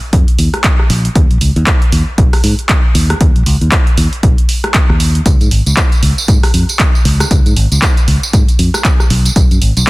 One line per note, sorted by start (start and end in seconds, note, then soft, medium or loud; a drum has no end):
0.13 0.22 F2 medium
0.13 kick loud
0.13 closed hi-hat medium
0.28 closed hi-hat soft
0.39 0.48 D#2 medium
0.39 open hi-hat loud
0.54 cross-stick medium
0.54 closed hi-hat soft
0.64 kick loud
0.64 clap loud
0.64 closed hi-hat medium
0.79 cross-stick medium
0.90 1.07 A#1 loud
0.90 open hi-hat loud
1.05 closed hi-hat medium
1.16 1.25 D#2 loud
1.16 kick loud
1.16 closed hi-hat medium
1.31 1.37 A#1 medium
1.31 closed hi-hat soft
1.41 1.50 C#2 medium
1.41 open hi-hat loud
1.56 1.63 D#2 loud
1.56 closed hi-hat soft
1.67 kick loud
1.67 clap loud
1.67 closed hi-hat medium
1.82 closed hi-hat soft
1.92 2.02 D#2 medium
1.92 open hi-hat loud
2.18 2.27 A#1 medium
2.18 kick loud
2.18 closed hi-hat medium
2.33 cross-stick medium
2.33 open hi-hat medium
2.44 2.53 G#2 medium
2.44 open hi-hat loud
2.59 closed hi-hat soft
2.69 kick loud
2.69 clap loud
2.69 closed hi-hat medium
2.95 3.12 D#2 loud
2.95 open hi-hat loud
3.10 cross-stick medium
3.10 closed hi-hat soft
3.21 3.30 D#2 medium
3.21 kick loud
3.21 closed hi-hat medium
3.36 3.42 A#1 medium
3.36 closed hi-hat soft
3.46 3.55 C#2 medium
3.46 open hi-hat loud
3.61 3.68 D#2 loud
3.61 closed hi-hat soft
3.72 kick loud
3.72 clap loud
3.72 closed hi-hat medium
3.87 closed hi-hat soft
3.97 4.07 D#2 medium
3.97 open hi-hat loud
4.13 closed hi-hat soft
4.23 4.32 A#1 medium
4.23 kick loud
4.23 closed hi-hat medium
4.38 closed hi-hat soft
4.49 open hi-hat loud
4.64 cross-stick medium
4.64 closed hi-hat soft
4.74 kick loud
4.74 clap loud
4.74 closed hi-hat medium
4.90 5.19 D#2 medium
4.90 cross-stick medium
5.00 open hi-hat loud
5.15 closed hi-hat soft
5.26 5.35 C#2 loud
5.26 kick loud
5.26 closed hi-hat medium
5.26 tambourine medium
5.41 5.47 G#2 medium
5.41 closed hi-hat soft
5.41 tambourine soft
5.51 5.61 G#1 medium
5.51 open hi-hat loud
5.66 5.73 C#2 loud
5.66 closed hi-hat soft
5.66 tambourine medium
5.77 kick loud
5.77 clap loud
5.77 closed hi-hat medium
5.77 tambourine medium
5.92 closed hi-hat soft
5.92 tambourine soft
6.03 6.12 C#2 medium
6.03 open hi-hat loud
6.18 tambourine medium
6.28 6.37 G#2 medium
6.28 kick loud
6.28 closed hi-hat medium
6.28 tambourine medium
6.43 cross-stick medium
6.43 open hi-hat medium
6.43 tambourine soft
6.54 6.63 F2 medium
6.54 open hi-hat loud
6.69 closed hi-hat soft
6.69 tambourine medium
6.79 kick loud
6.79 clap loud
6.79 closed hi-hat medium
6.79 tambourine medium
6.95 tambourine soft
7.05 7.23 C#2 loud
7.05 open hi-hat loud
7.20 cross-stick medium
7.20 closed hi-hat soft
7.20 tambourine medium
7.31 7.40 C#2 loud
7.31 kick loud
7.31 closed hi-hat medium
7.31 tambourine medium
7.46 7.52 G#2 medium
7.46 closed hi-hat soft
7.46 tambourine soft
7.56 7.66 G#1 medium
7.56 open hi-hat loud
7.72 7.78 C#2 loud
7.72 closed hi-hat soft
7.72 tambourine medium
7.82 kick loud
7.82 clap loud
7.82 closed hi-hat medium
7.82 tambourine medium
7.97 closed hi-hat soft
7.97 tambourine soft
8.08 8.17 C#2 medium
8.08 open hi-hat loud
8.23 tambourine medium
8.33 8.43 G#2 medium
8.33 kick loud
8.33 closed hi-hat medium
8.33 tambourine medium
8.48 closed hi-hat soft
8.48 tambourine soft
8.59 8.68 F2 medium
8.59 open hi-hat loud
8.74 cross-stick medium
8.74 closed hi-hat soft
8.74 tambourine medium
8.85 kick loud
8.85 clap loud
8.85 closed hi-hat medium
8.85 tambourine medium
9.00 cross-stick medium
9.00 tambourine soft
9.10 9.28 B1 loud
9.10 open hi-hat loud
9.25 closed hi-hat medium
9.25 tambourine medium
9.36 9.45 B1 loud
9.36 kick loud
9.36 closed hi-hat medium
9.36 tambourine medium
9.51 9.58 F#2 medium
9.51 closed hi-hat soft
9.51 tambourine soft
9.62 9.71 G#1 medium
9.62 open hi-hat loud
9.77 9.83 B1 loud
9.77 closed hi-hat soft
9.77 tambourine medium